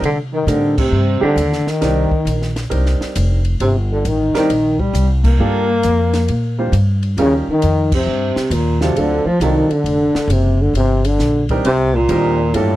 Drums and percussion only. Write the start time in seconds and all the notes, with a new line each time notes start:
0.04 ride
0.48 hi-hat pedal, ride
0.78 kick, crash
1.38 hi-hat pedal, ride
1.52 snare
1.67 snare
1.82 snare, ride
2.11 kick
2.27 hi-hat pedal, ride
2.42 snare
2.56 snare, ride
2.71 ride
2.86 snare
3.01 snare
3.16 hi-hat pedal, ride
3.45 ride
3.60 ride
4.05 hi-hat pedal, ride
4.35 snare, ride
4.50 ride
4.80 kick
4.95 hi-hat pedal, ride
5.24 kick, crash
5.83 hi-hat pedal, ride
6.14 snare, ride
6.28 ride
6.73 hi-hat pedal, ride
7.03 ride
7.18 ride
7.62 hi-hat pedal, ride
7.92 kick, crash
8.36 snare
8.51 hi-hat pedal, ride
8.81 snare
8.96 ride
9.41 hi-hat pedal, ride
9.71 ride
9.86 ride
10.15 snare
10.30 hi-hat pedal, ride
10.75 ride
11.05 ride
11.20 snare, hi-hat pedal
11.49 kick, ride
11.65 ride
12.09 hi-hat pedal, ride
12.54 ride